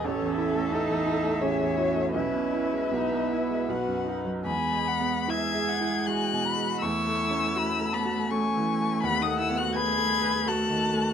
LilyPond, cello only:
\new Staff \with { instrumentName = "Cello" } { \time 3/4 \key e \major \tempo 4 = 81 cis'4 dis'4 cis'4 | cis'4 b4. r8 | b4 gis'4 fis'4 | e'4. b8 cis'4 |
b16 dis'16 e'16 fis'16 gis'4 fis'4 | }